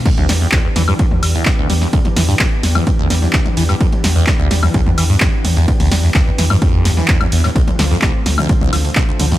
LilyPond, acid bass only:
\new Staff \with { instrumentName = "Acid bass" } { \clef bass \time 4/4 \key e \phrygian \tempo 4 = 128 e,16 d,16 g16 e,16 d,16 e,16 e16 g,16 f,16 r8 e,16 r16 d,16 g16 e,16 | d,16 e,16 e16 g,16 f,16 r8 e,16 e,16 d,16 g16 e,16 d,16 e,16 e16 g,16 | f,16 r8 e,16 r16 d,16 g16 e,16 d,16 e,16 e16 g,16 f,16 r8 e,16 | e,16 d,16 g16 e,16 d,16 e,16 e16 g,16 f,8 g,16 e16 e,16 e,16 e,16 a,16 |
c,16 d,16 d16 f,16 c,16 r8 d,16 d,16 c,16 f16 d,16 c,16 d,16 d16 f,16 | }